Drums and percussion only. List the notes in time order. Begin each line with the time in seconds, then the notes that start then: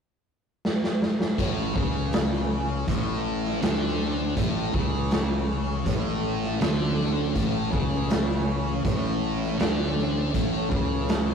0.65 snare
0.84 snare
1.02 snare
1.21 snare
1.38 kick, closed hi-hat
1.76 kick
2.13 snare, closed hi-hat
2.33 snare
2.88 kick, closed hi-hat
3.45 snare
3.62 snare, closed hi-hat
4.01 snare
4.37 kick, closed hi-hat
4.74 kick
5.11 snare, closed hi-hat
5.86 kick, closed hi-hat
6.44 snare
6.61 snare, closed hi-hat
7.00 snare
7.35 kick, closed hi-hat
7.73 kick
8.10 snare, closed hi-hat
8.30 snare
8.85 kick, closed hi-hat
9.43 snare
9.60 snare, closed hi-hat
9.98 snare
10.34 kick, closed hi-hat
10.72 kick
11.09 snare, closed hi-hat
11.29 snare